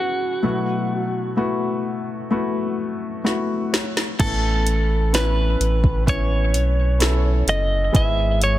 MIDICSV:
0, 0, Header, 1, 5, 480
1, 0, Start_track
1, 0, Tempo, 937500
1, 224, Time_signature, 4, 2, 24, 8
1, 4397, End_track
2, 0, Start_track
2, 0, Title_t, "Clean electric guitar"
2, 0, Program_c, 0, 27
2, 0, Note_on_c, 0, 66, 57
2, 1645, Note_off_c, 0, 66, 0
2, 2152, Note_on_c, 0, 69, 64
2, 2634, Note_off_c, 0, 69, 0
2, 2636, Note_on_c, 0, 71, 69
2, 3090, Note_off_c, 0, 71, 0
2, 3119, Note_on_c, 0, 73, 81
2, 3834, Note_off_c, 0, 73, 0
2, 3837, Note_on_c, 0, 75, 72
2, 4074, Note_off_c, 0, 75, 0
2, 4076, Note_on_c, 0, 76, 79
2, 4317, Note_off_c, 0, 76, 0
2, 4319, Note_on_c, 0, 73, 81
2, 4397, Note_off_c, 0, 73, 0
2, 4397, End_track
3, 0, Start_track
3, 0, Title_t, "Grand piano"
3, 0, Program_c, 1, 0
3, 0, Control_c, 1, 64, 127
3, 0, Note_on_c, 1, 44, 45
3, 0, Note_on_c, 1, 56, 44
3, 0, Note_on_c, 1, 59, 56
3, 0, Note_on_c, 1, 61, 51
3, 0, Note_on_c, 1, 64, 45
3, 0, Note_on_c, 1, 66, 51
3, 0, Note_on_c, 1, 71, 60
3, 200, Note_off_c, 1, 59, 0
3, 200, Note_off_c, 1, 64, 0
3, 201, Note_off_c, 1, 61, 0
3, 202, Note_off_c, 1, 66, 0
3, 204, Note_off_c, 1, 56, 0
3, 205, Note_off_c, 1, 44, 0
3, 218, Note_on_c, 1, 57, 58
3, 221, Note_on_c, 1, 59, 49
3, 224, Note_on_c, 1, 54, 49
3, 224, Note_on_c, 1, 64, 52
3, 225, Note_on_c, 1, 47, 47
3, 227, Note_on_c, 1, 66, 62
3, 230, Control_c, 1, 64, 0
3, 231, Note_off_c, 1, 71, 0
3, 324, Control_c, 1, 64, 127
3, 677, Note_off_c, 1, 57, 0
3, 679, Note_off_c, 1, 59, 0
3, 680, Note_off_c, 1, 64, 0
3, 681, Note_off_c, 1, 66, 0
3, 700, Note_on_c, 1, 57, 58
3, 703, Note_on_c, 1, 59, 61
3, 703, Note_on_c, 1, 64, 57
3, 705, Note_on_c, 1, 66, 70
3, 1158, Note_off_c, 1, 57, 0
3, 1159, Note_off_c, 1, 59, 0
3, 1160, Note_off_c, 1, 64, 0
3, 1160, Note_off_c, 1, 66, 0
3, 1180, Note_on_c, 1, 57, 62
3, 1184, Note_on_c, 1, 59, 60
3, 1186, Note_on_c, 1, 64, 55
3, 1186, Note_on_c, 1, 66, 65
3, 1638, Note_off_c, 1, 57, 0
3, 1640, Note_off_c, 1, 59, 0
3, 1641, Note_off_c, 1, 64, 0
3, 1641, Note_off_c, 1, 66, 0
3, 1660, Note_on_c, 1, 57, 51
3, 1660, Note_on_c, 1, 59, 48
3, 1662, Note_on_c, 1, 78, 46
3, 1663, Note_on_c, 1, 64, 53
3, 1664, Note_on_c, 1, 66, 66
3, 1886, Note_off_c, 1, 78, 0
3, 1907, Note_on_c, 1, 73, 43
3, 2118, Note_off_c, 1, 57, 0
3, 2118, Note_off_c, 1, 59, 0
3, 2119, Note_off_c, 1, 64, 0
3, 2120, Note_off_c, 1, 66, 0
3, 2124, Note_off_c, 1, 47, 0
3, 2124, Note_off_c, 1, 54, 0
3, 2129, Note_off_c, 1, 73, 0
3, 2150, Note_on_c, 1, 59, 53
3, 2151, Control_c, 1, 64, 0
3, 2152, Note_on_c, 1, 45, 51
3, 2153, Note_on_c, 1, 52, 49
3, 2153, Note_on_c, 1, 61, 50
3, 2155, Note_on_c, 1, 64, 53
3, 2156, Note_on_c, 1, 69, 65
3, 2244, Control_c, 1, 64, 127
3, 2603, Note_off_c, 1, 59, 0
3, 2605, Note_off_c, 1, 61, 0
3, 2605, Note_off_c, 1, 64, 0
3, 2606, Note_off_c, 1, 69, 0
3, 2626, Note_on_c, 1, 59, 59
3, 2630, Note_on_c, 1, 64, 54
3, 2632, Note_on_c, 1, 61, 52
3, 2634, Note_on_c, 1, 71, 60
3, 2848, Note_off_c, 1, 45, 0
3, 2848, Note_off_c, 1, 52, 0
3, 3081, Note_off_c, 1, 59, 0
3, 3083, Note_off_c, 1, 64, 0
3, 3084, Note_off_c, 1, 61, 0
3, 3085, Note_off_c, 1, 71, 0
3, 3104, Note_on_c, 1, 59, 64
3, 3106, Note_on_c, 1, 61, 60
3, 3108, Note_on_c, 1, 71, 66
3, 3109, Note_on_c, 1, 64, 57
3, 3560, Note_off_c, 1, 59, 0
3, 3561, Note_off_c, 1, 61, 0
3, 3562, Note_off_c, 1, 64, 0
3, 3562, Note_off_c, 1, 71, 0
3, 3579, Note_on_c, 1, 59, 55
3, 3583, Note_on_c, 1, 61, 51
3, 3585, Note_on_c, 1, 64, 49
3, 3588, Note_on_c, 1, 69, 65
3, 4038, Note_off_c, 1, 59, 0
3, 4040, Note_off_c, 1, 61, 0
3, 4040, Note_off_c, 1, 64, 0
3, 4042, Note_off_c, 1, 69, 0
3, 4056, Note_on_c, 1, 56, 61
3, 4059, Note_on_c, 1, 59, 56
3, 4061, Note_on_c, 1, 44, 53
3, 4061, Note_on_c, 1, 68, 67
3, 4063, Note_on_c, 1, 64, 56
3, 4071, Control_c, 1, 64, 0
3, 4161, Control_c, 1, 64, 127
3, 4397, Note_off_c, 1, 44, 0
3, 4397, Note_off_c, 1, 56, 0
3, 4397, Note_off_c, 1, 59, 0
3, 4397, Note_off_c, 1, 64, 0
3, 4397, Note_off_c, 1, 68, 0
3, 4397, End_track
4, 0, Start_track
4, 0, Title_t, "Sub bass"
4, 0, Program_c, 2, 38
4, 2148, Note_on_c, 2, 33, 93
4, 2846, Note_off_c, 2, 33, 0
4, 2866, Note_on_c, 2, 33, 104
4, 3343, Note_on_c, 2, 35, 84
4, 3350, Note_off_c, 2, 33, 0
4, 3803, Note_off_c, 2, 35, 0
4, 3821, Note_on_c, 2, 30, 82
4, 4046, Note_off_c, 2, 30, 0
4, 4068, Note_on_c, 2, 32, 94
4, 4397, Note_off_c, 2, 32, 0
4, 4397, End_track
5, 0, Start_track
5, 0, Title_t, "Drums"
5, 1671, Note_on_c, 9, 38, 37
5, 1723, Note_off_c, 9, 38, 0
5, 1914, Note_on_c, 9, 38, 70
5, 1965, Note_off_c, 9, 38, 0
5, 2033, Note_on_c, 9, 38, 65
5, 2084, Note_off_c, 9, 38, 0
5, 2148, Note_on_c, 9, 36, 90
5, 2148, Note_on_c, 9, 42, 66
5, 2149, Note_on_c, 9, 49, 67
5, 2199, Note_off_c, 9, 42, 0
5, 2200, Note_off_c, 9, 36, 0
5, 2200, Note_off_c, 9, 49, 0
5, 2389, Note_on_c, 9, 42, 66
5, 2440, Note_off_c, 9, 42, 0
5, 2631, Note_on_c, 9, 42, 73
5, 2635, Note_on_c, 9, 38, 90
5, 2683, Note_off_c, 9, 42, 0
5, 2686, Note_off_c, 9, 38, 0
5, 2872, Note_on_c, 9, 42, 63
5, 2923, Note_off_c, 9, 42, 0
5, 2989, Note_on_c, 9, 36, 80
5, 3040, Note_off_c, 9, 36, 0
5, 3109, Note_on_c, 9, 36, 72
5, 3114, Note_on_c, 9, 42, 59
5, 3160, Note_off_c, 9, 36, 0
5, 3165, Note_off_c, 9, 42, 0
5, 3350, Note_on_c, 9, 42, 58
5, 3401, Note_off_c, 9, 42, 0
5, 3586, Note_on_c, 9, 42, 74
5, 3595, Note_on_c, 9, 38, 72
5, 3637, Note_off_c, 9, 42, 0
5, 3646, Note_off_c, 9, 38, 0
5, 3828, Note_on_c, 9, 42, 64
5, 3879, Note_off_c, 9, 42, 0
5, 4068, Note_on_c, 9, 36, 99
5, 4069, Note_on_c, 9, 42, 85
5, 4119, Note_off_c, 9, 36, 0
5, 4120, Note_off_c, 9, 42, 0
5, 4309, Note_on_c, 9, 42, 67
5, 4360, Note_off_c, 9, 42, 0
5, 4397, End_track
0, 0, End_of_file